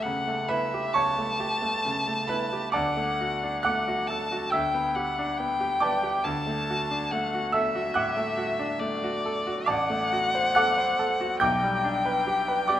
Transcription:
Already playing: grand piano C#2 A3 G4 A4 E5 A5
0.02 grand piano C#3, violin F#5
0.28 grand piano A3
0.48 grand piano E4 B4 B5, violin E5
0.74 grand piano G4
0.94 grand piano C#2 C#5 A5 C#6, violin A5
1.18 grand piano A3
1.40 grand piano G4
1.62 grand piano A3
1.85 grand piano C#3
2.08 grand piano A3
2.28 grand piano E4 B4 B5
2.53 grand piano G4
2.72 grand piano D2 D5 A5 D6, violin F#5
2.97 grand piano A3
3.21 grand piano F#4
3.43 grand piano D4
3.63 grand piano A3 F#5 D6 F#6, violin F#5
3.88 grand piano F#4
4.07 grand piano A4, violin A5
4.32 grand piano F#4
4.51 grand piano D2 E5 E6, violin G5
4.74 grand piano B3
4.95 grand piano G4, violin F#5
5.19 grand piano D4
5.38 grand piano B3, violin G5
5.61 grand piano G4
5.80 grand piano B4 D5 A5 D6
6.03 grand piano G4
6.24 grand piano D2, violin A5
6.47 grand piano A3
6.70 grand piano F#4
6.91 grand piano D4
7.11 grand piano A3, violin F#5
7.34 grand piano F#4
7.52 grand piano A4 E5 E6, violin E5
7.75 grand piano F#4
7.94 grand piano A2 F#5 D6 F#6
8.17 grand piano A3
8.38 grand piano F#4
8.59 grand piano D4
8.80 grand piano A3, violin D5
9.04 grand piano F#4
9.26 grand piano A4
9.47 grand piano F#4
9.66 grand piano A1 D5 A5 D6, violin F#5
9.90 grand piano A3
10.13 grand piano F#4
10.35 grand piano C5
10.55 grand piano A4 F#5 D6 F#6
10.78 grand piano C5
10.99 grand piano A4
11.21 grand piano F#4
11.40 grand piano B1 G5 D6 G6, violin G5
11.63 grand piano G3
11.84 grand piano D4
12.05 grand piano B4
12.27 grand piano G4
12.48 grand piano B4
12.68 grand piano G4 D5 D6

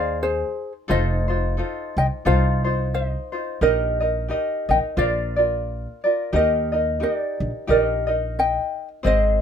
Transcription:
Already playing: upright bass D#2, ukulele D#4 G#4 C5 D5 F5
0.23 ukulele G#4 C5
0.88 upright bass F1, ukulele D#4 F4 A4 C5 D#5
1.28 ukulele D#4 F4 C5
1.57 ukulele D#4 F4 A4 C5
1.97 upright bass C2, ukulele D#5 G5
2.25 upright bass C2, ukulele D#4 F4 A4 C5 F5
2.64 ukulele D#4 F4 C5
2.94 ukulele C5 D#5
3.32 ukulele D#4 F4 C5
3.61 upright bass A#1, ukulele D#4 G4 A#4 D#5
4.00 ukulele D#4 A#4 D#5
4.28 ukulele D#4 G4 A#4 D#5
4.69 upright bass A#1, ukulele D#4 A#4 D#5 G5
4.97 upright bass A#1, ukulele F4 A#4 C5 D5 F5
5.36 ukulele F4 A#4 D5
6.04 ukulele F4 A#4 D5
6.33 upright bass D#2, ukulele D#4 G4 A#4 D#5
6.72 ukulele D#4 A#4 D#5
7.00 ukulele D#4 G4 A#4 D#5
7.14 ukulele D5
7.40 upright bass A#1
7.67 upright bass A#1, ukulele D#4 G4 A#4 D5 D#5
7.82 ukulele D#5
8.07 ukulele D#4 A#4 D#5
8.39 ukulele D#5 G5
9.03 upright bass G#1, ukulele C4 G#4 C5 D#5

